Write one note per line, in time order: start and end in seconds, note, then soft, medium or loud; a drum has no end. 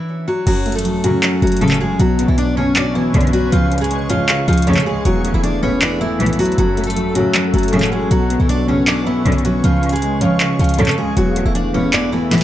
0.00 0.26 E3 medium
0.00 0.25 E4 medium
0.28 0.46 F#3 medium
0.28 0.45 F#4 medium
0.47 0.86 F#1 loud
0.47 1.21 F#2 medium
0.47 0.74 F#3 medium
0.47 0.74 F#4 loud
0.47 1.98 F#4 medium
0.47 1.98 C#5 medium
0.47 1.98 A5 medium
0.47 closed hi-hat medium
0.47 crash loud
0.66 1.41 A3 medium
0.66 closed hi-hat medium
0.72 1.02 A4 medium
0.72 closed hi-hat medium
0.76 1.03 A3 medium
0.76 closed hi-hat medium
0.85 1.03 G#1 loud
0.85 1.79 F#3 medium
0.85 closed hi-hat medium
1.04 1.12 A1 medium
1.04 1.12 F#2 medium
1.04 1.12 C#3 medium
1.04 1.40 F#3 medium
1.04 1.60 C#4 loud
1.04 1.40 F#4 medium
1.04 closed hi-hat medium
1.23 1.99 F#2 medium
1.23 clap loud
1.23 closed hi-hat medium
1.42 1.97 F#1 loud
1.42 1.60 F#3 medium
1.42 2.00 A3 medium
1.42 1.60 F#4 medium
1.42 closed hi-hat soft
1.47 closed hi-hat medium
1.52 closed hi-hat medium
1.57 closed hi-hat medium
1.61 1.78 A1 loud
1.61 1.78 F#2 loud
1.61 1.78 C#3 loud
1.61 1.79 A3 medium
1.61 1.99 C#4 loud
1.61 1.79 A4 medium
1.61 closed hi-hat medium
1.68 clap medium
1.68 closed hi-hat medium
1.74 closed hi-hat medium
1.80 2.00 F#3 medium
1.80 1.99 G#3 medium
1.80 1.98 G#4 medium
1.99 2.27 B1 loud
1.99 2.74 B2 medium
1.99 2.27 F#3 medium
1.99 2.26 F#4 loud
1.99 3.51 B4 medium
1.99 3.51 C#5 medium
1.99 5.02 C#6 medium
1.99 closed hi-hat medium
2.19 2.93 B3 medium
2.19 closed hi-hat medium
2.28 3.11 B1 loud
2.28 2.37 E3 medium
2.28 2.37 E4 medium
2.38 3.32 F#3 medium
2.38 2.55 D4 loud
2.38 2.56 D5 medium
2.38 closed hi-hat medium
2.57 2.65 F#1 medium
2.57 2.65 D2 medium
2.57 2.65 C#3 medium
2.57 3.13 C#4 loud
2.57 2.75 C#4 medium
2.57 2.75 C#5 medium
2.76 3.52 B2 medium
2.76 2.94 D4 medium
2.76 2.94 D5 medium
2.76 clap loud
2.76 closed hi-hat medium
2.95 3.31 E3 medium
2.95 3.52 B3 medium
2.95 3.31 E4 medium
3.14 3.51 B1 loud
3.14 3.30 B1 loud
3.14 3.30 F#2 loud
3.14 3.30 D3 loud
3.14 3.52 C#4 loud
3.14 closed hi-hat medium
3.21 closed hi-hat medium
3.27 closed hi-hat soft
3.33 3.52 F#3 medium
3.33 3.51 F#3 medium
3.33 3.51 F#4 medium
3.33 closed hi-hat medium
3.52 4.44 C#2 loud
3.52 4.27 C#3 medium
3.52 3.80 F3 medium
3.52 3.79 F4 loud
3.52 5.04 G#4 medium
3.52 5.04 F5 medium
3.52 closed hi-hat medium
3.72 4.46 C#4 medium
3.72 closed hi-hat soft
3.78 4.08 G#3 medium
3.78 4.08 G#4 medium
3.78 closed hi-hat medium
3.84 closed hi-hat medium
3.91 4.85 G#3 medium
3.91 closed hi-hat medium
4.10 4.18 G#1 medium
4.10 4.18 F2 medium
4.10 4.18 C#3 medium
4.10 4.46 F3 medium
4.10 4.46 F4 medium
4.10 4.66 C#5 loud
4.10 closed hi-hat medium
4.29 5.05 C#3 medium
4.29 clap loud
4.29 closed hi-hat medium
4.48 4.78 C#2 loud
4.48 4.66 F3 medium
4.48 5.05 C#4 medium
4.48 4.66 F4 medium
4.48 closed hi-hat soft
4.53 closed hi-hat medium
4.58 closed hi-hat medium
4.62 closed hi-hat medium
4.67 4.83 G#1 loud
4.67 4.83 F2 loud
4.67 4.83 C#3 loud
4.67 4.85 A3 medium
4.67 4.85 A4 medium
4.67 5.05 C#5 loud
4.67 closed hi-hat medium
4.73 4.92 C#3 loud
4.73 clap medium
4.73 closed hi-hat medium
4.80 closed hi-hat medium
4.86 5.05 G#3 medium
4.86 5.04 G#3 medium
4.86 5.04 G#4 medium
4.91 5.05 C#2 loud
5.05 5.33 E1 loud
5.05 5.80 E2 medium
5.05 5.33 F#3 medium
5.05 5.32 F#4 loud
5.05 8.08 A4 medium
5.05 6.57 E5 medium
5.05 6.57 B5 medium
5.05 closed hi-hat medium
5.24 5.99 A3 medium
5.24 closed hi-hat medium
5.34 6.45 E1 loud
5.34 5.43 E3 medium
5.34 5.43 E4 medium
5.43 6.38 E3 medium
5.43 5.61 D4 medium
5.43 5.62 D5 medium
5.43 closed hi-hat medium
5.63 5.71 B1 medium
5.63 5.71 A2 medium
5.63 5.71 E3 medium
5.63 6.19 B3 loud
5.63 5.80 C#4 medium
5.63 5.81 C#5 medium
5.82 6.58 E2 medium
5.82 5.99 D4 medium
5.82 6.00 D5 medium
5.82 clap loud
5.82 closed hi-hat medium
6.01 6.37 E3 medium
6.01 6.58 A3 medium
6.01 6.37 E4 medium
6.20 6.36 B1 loud
6.20 6.36 A2 loud
6.20 6.36 E3 loud
6.20 6.58 B3 loud
6.20 closed hi-hat medium
6.26 closed hi-hat medium
6.33 closed hi-hat medium
6.39 6.58 E3 medium
6.39 6.57 F#3 medium
6.39 6.57 F#4 medium
6.39 closed hi-hat medium
6.39 open hi-hat medium
6.45 closed hi-hat soft
6.52 closed hi-hat soft
6.58 6.98 F#1 loud
6.58 7.33 F#2 medium
6.58 6.86 F#3 medium
6.58 6.85 F#4 loud
6.58 8.09 F#5 medium
6.58 8.09 C#6 medium
6.58 closed hi-hat medium
6.77 7.52 A3 medium
6.77 closed hi-hat soft
6.84 7.14 A3 medium
6.84 7.14 A4 medium
6.84 closed hi-hat medium
6.90 closed hi-hat medium
6.96 7.14 G#1 loud
6.96 7.90 F#3 medium
6.96 closed hi-hat medium
7.15 7.24 A1 medium
7.15 7.24 F#2 medium
7.15 7.24 C#3 medium
7.15 7.52 F#3 medium
7.15 7.71 C#4 loud
7.15 7.51 F#4 medium
7.15 closed hi-hat medium
7.34 8.11 F#2 medium
7.34 clap loud
7.34 closed hi-hat medium
7.54 8.09 F#1 loud
7.54 7.72 F#3 medium
7.54 8.11 A3 medium
7.54 7.71 F#4 medium
7.54 closed hi-hat soft
7.58 closed hi-hat medium
7.63 closed hi-hat medium
7.68 closed hi-hat medium
7.73 7.89 A1 loud
7.73 7.89 F#2 medium
7.73 7.89 C#3 loud
7.73 7.91 A3 medium
7.73 8.11 C#4 loud
7.73 7.90 A4 medium
7.73 closed hi-hat medium
7.79 clap medium
7.79 closed hi-hat medium
7.86 closed hi-hat medium
7.92 8.11 F#3 medium
7.92 8.10 G#3 medium
7.92 8.10 G#4 medium
8.11 8.38 B1 loud
8.11 8.86 B2 medium
8.11 8.38 F#3 medium
8.11 8.38 F#4 loud
8.11 9.62 B4 medium
8.11 9.62 C#5 medium
8.11 11.14 C#6 medium
8.11 closed hi-hat medium
8.30 9.05 B3 medium
8.30 closed hi-hat medium
8.40 9.22 B1 loud
8.40 8.49 E3 medium
8.40 8.48 E4 medium
8.49 9.43 F#3 medium
8.49 8.67 D4 loud
8.49 8.67 D5 medium
8.49 closed hi-hat medium
8.68 8.76 F#1 medium
8.68 8.76 D2 medium
8.68 8.76 C#3 medium
8.68 9.24 C#4 loud
8.68 8.86 C#4 medium
8.68 8.86 C#5 medium
8.87 9.64 B2 medium
8.87 9.05 D4 medium
8.87 9.06 D5 medium
8.87 clap loud
8.87 closed hi-hat medium
9.06 9.43 E3 medium
9.06 9.64 B3 medium
9.06 9.42 E4 medium
9.26 9.62 B1 loud
9.26 9.42 B1 loud
9.26 9.42 F#2 loud
9.26 9.42 D3 loud
9.26 9.64 C#4 loud
9.26 closed hi-hat medium
9.32 closed hi-hat medium
9.38 closed hi-hat soft
9.45 9.64 F#3 medium
9.45 9.63 F#3 medium
9.45 9.62 F#4 medium
9.45 closed hi-hat medium
9.64 10.56 C#2 loud
9.64 10.39 C#3 medium
9.64 9.91 F3 medium
9.64 9.91 F4 loud
9.64 11.15 G#4 medium
9.64 11.15 F5 medium
9.64 closed hi-hat medium
9.83 10.58 C#4 medium
9.83 closed hi-hat soft
9.89 10.20 G#3 medium
9.89 10.19 G#4 medium
9.89 closed hi-hat medium
9.96 closed hi-hat medium
10.02 10.96 G#3 medium
10.02 closed hi-hat medium
10.21 10.29 G#1 medium
10.21 10.29 F2 medium
10.21 10.29 C#3 medium
10.21 10.58 F3 medium
10.21 10.57 F4 medium
10.21 10.77 C#5 loud
10.21 closed hi-hat medium
10.40 11.17 C#3 medium
10.40 clap loud
10.40 closed hi-hat medium
10.59 10.90 C#2 loud
10.59 10.78 F3 medium
10.59 11.17 C#4 medium
10.59 10.77 F4 medium
10.59 closed hi-hat soft
10.64 closed hi-hat medium
10.69 closed hi-hat medium
10.74 closed hi-hat medium
10.78 10.95 G#1 loud
10.78 10.95 F2 loud
10.78 10.95 C#3 loud
10.78 10.97 A3 medium
10.78 10.96 A4 medium
10.78 11.17 C#5 loud
10.78 closed hi-hat medium
10.85 11.04 C#3 loud
10.85 clap medium
10.85 closed hi-hat medium
10.91 closed hi-hat medium
10.98 11.17 G#3 medium
10.98 11.16 G#3 medium
10.98 11.15 G#4 medium
11.02 11.16 C#2 loud
11.17 11.44 E1 loud
11.17 11.92 E2 medium
11.17 11.44 F#3 medium
11.17 11.44 F#4 loud
11.17 12.44 A4 medium
11.17 12.44 E5 medium
11.17 12.44 B5 medium
11.17 closed hi-hat medium
11.36 12.11 A3 medium
11.36 closed hi-hat medium
11.45 12.44 E1 loud
11.45 11.55 E3 medium
11.45 11.54 E4 medium
11.55 12.44 E3 medium
11.55 11.73 D4 medium
11.55 11.73 D5 medium
11.55 closed hi-hat medium
11.74 11.82 B1 medium
11.74 11.82 A2 medium
11.74 11.82 E3 medium
11.74 12.30 B3 loud
11.74 11.92 C#4 medium
11.74 11.92 C#5 medium
11.93 12.44 E2 medium
11.93 12.11 D4 medium
11.93 12.11 D5 medium
11.93 clap loud
11.93 closed hi-hat medium
12.12 12.44 E3 medium
12.12 12.44 A3 medium
12.12 12.44 E4 medium
12.31 12.44 B1 loud
12.31 12.44 A2 loud
12.31 12.44 E3 loud
12.31 12.44 B3 loud
12.31 snare medium
12.31 closed hi-hat medium
12.38 closed hi-hat medium